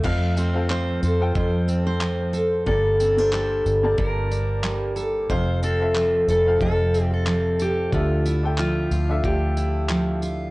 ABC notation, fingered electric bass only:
X:1
M:4/4
L:1/8
Q:"Swing 16ths" 1/4=91
K:F
V:1 name="Fingered electric bass" clef=bass
F,,3 F,, F,,4 | G,,,3 G,,, G,,,4 | F,,,3 F,,, F,,,4 | D,,3 D,, D,,4 |]